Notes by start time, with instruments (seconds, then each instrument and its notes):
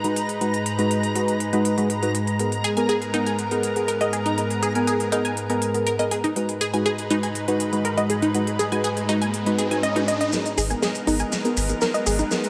Already playing: analog synth pad G#2 G#3 D#4 B4, synth texture A#5
0.04 synth stab G#3 D#4 F#4 B4, closed hi-hat
0.16 closed hi-hat
0.29 closed hi-hat
0.41 synth stab G#3 D#4 F#4 B4, closed hi-hat
0.54 closed hi-hat
0.66 closed hi-hat
0.78 synth stab G#3 D#4 F#4 B4, closed hi-hat
0.91 closed hi-hat
1.03 closed hi-hat
1.15 synth stab G#3 D#4 F#4 B4, closed hi-hat
1.28 closed hi-hat
1.40 closed hi-hat
1.53 synth stab G#3 D#4 F#4 B4, closed hi-hat
1.65 closed hi-hat
1.78 synth stab G#3 D#4 F#4 B4, closed hi-hat
1.90 closed hi-hat
2.03 synth stab G#3 D#4 F#4 B4, closed hi-hat
2.15 closed hi-hat
2.27 closed hi-hat
2.39 analog synth pad B3 A#4, synth stab B3 G#4 A#4, closed hi-hat
2.52 closed hi-hat
2.64 synth pluck G#4, closed hi-hat
2.77 synth stab B3 G#4 A#4, synth pluck G#5, closed hi-hat
2.89 synth pluck G#4, closed hi-hat
3.02 closed hi-hat
3.14 synth stab B3 G#4 A#4, synth pluck D#4, closed hi-hat
3.26 synth pluck G#5, closed hi-hat
3.39 closed hi-hat
3.51 synth stab B3 G#4 A#4, closed hi-hat
3.63 closed hi-hat
3.76 synth stab B3 G#4 A#4, closed hi-hat
3.88 synth pluck A#4, closed hi-hat
4.01 synth stab B3 G#4 A#4, synth pluck D#5, closed hi-hat
4.13 synth pluck G#4, closed hi-hat
4.26 synth pluck D#4, closed hi-hat
4.38 synth stab B3 G#4 A#4, closed hi-hat
4.50 closed hi-hat
4.63 synth pluck G#4, closed hi-hat
4.75 synth stab B3 G#4 A#4, synth pluck G#5, closed hi-hat
4.87 synth pluck G#4, closed hi-hat
5.00 closed hi-hat
5.12 synth stab B3 G#4 A#4, synth pluck D#4, closed hi-hat
5.25 synth pluck G#5, closed hi-hat
5.37 closed hi-hat
5.50 synth stab B3 G#4 A#4, closed hi-hat
5.62 closed hi-hat
5.74 synth stab B3 G#4 A#4, closed hi-hat
5.87 synth pluck A#4, closed hi-hat
5.99 synth stab B3 G#4 A#4, synth pluck D#5, closed hi-hat
6.11 synth pluck G#4, closed hi-hat
6.24 synth pluck D#4, closed hi-hat
6.36 analog synth pad G#2 G#3 D#4 B4, synth stab G#3 D#4 F#4 B4, closed hi-hat, riser
6.49 closed hi-hat
6.61 synth pluck G#4, closed hi-hat
6.74 synth stab G#3 D#4 F#4 B4, synth pluck G#5, closed hi-hat
6.86 synth pluck G#4, closed hi-hat
6.98 closed hi-hat
7.10 synth stab G#3 D#4 F#4 B4, synth pluck D#4, closed hi-hat
7.23 synth pluck G#5, closed hi-hat
7.35 closed hi-hat
7.48 synth stab G#3 D#4 F#4 B4, closed hi-hat
7.60 closed hi-hat
7.73 synth stab G#3 D#4 F#4 B4, closed hi-hat
7.85 synth pluck A#4, closed hi-hat
7.97 synth stab G#3 D#4 F#4 B4, synth pluck D#5, closed hi-hat
8.10 synth pluck G#4, closed hi-hat
8.22 synth pluck D#4, closed hi-hat
8.34 synth stab G#3 D#4 F#4 B4, closed hi-hat
8.47 closed hi-hat
8.59 synth pluck G#4, closed hi-hat
8.72 synth stab G#3 D#4 F#4 B4, synth pluck G#5, closed hi-hat
8.84 synth pluck G#4, closed hi-hat
8.97 closed hi-hat
9.09 synth stab G#3 D#4 F#4 B4, synth pluck D#4, closed hi-hat
9.21 synth pluck G#5, closed hi-hat
9.34 closed hi-hat
9.46 synth stab G#3 D#4 F#4 B4, closed hi-hat
9.58 synth pluck G#4, closed hi-hat
9.71 synth stab G#3 D#4 F#4 B4, synth pluck G#5, closed hi-hat
9.83 synth pluck D#5, closed hi-hat
9.96 synth stab G#3 D#4 F#4 B4, synth pluck D#4, closed hi-hat
10.08 synth pluck D#5, closed hi-hat
10.21 synth pluck D#5, closed hi-hat
10.32 analog synth pad G#3 B3 D#4 A#4, synth stab B3 G#4 A#4, snare, closed hi-hat, riser, maracas
10.46 closed hi-hat, maracas
10.58 analog synth bass G#1, synth pluck G#4, open hi-hat, maracas
10.70 synth stab B3 G#4 A#4, synth pluck G#5, closed hi-hat, maracas
10.82 synth pluck G#4, snare, closed hi-hat, maracas
10.95 closed hi-hat, maracas
11.07 analog synth bass G#1, synth stab B3 G#4 A#4, synth pluck D#4, open hi-hat, maracas
11.19 synth pluck G#5, closed hi-hat, maracas
11.32 snare, closed hi-hat, maracas
11.45 synth stab B3 G#4 A#4, closed hi-hat, maracas
11.57 analog synth bass G#1, open hi-hat, maracas
11.69 synth stab B3 G#4 A#4, closed hi-hat, maracas
11.81 synth pluck A#4, snare, closed hi-hat, maracas
11.94 synth stab B3 G#4 A#4, synth pluck D#5, closed hi-hat, maracas
12.06 analog synth bass G#1, synth pluck G#4, open hi-hat, maracas
12.19 synth pluck D#4, closed hi-hat, maracas
12.31 synth stab B3 G#4 A#4, snare, closed hi-hat, maracas
12.44 closed hi-hat, maracas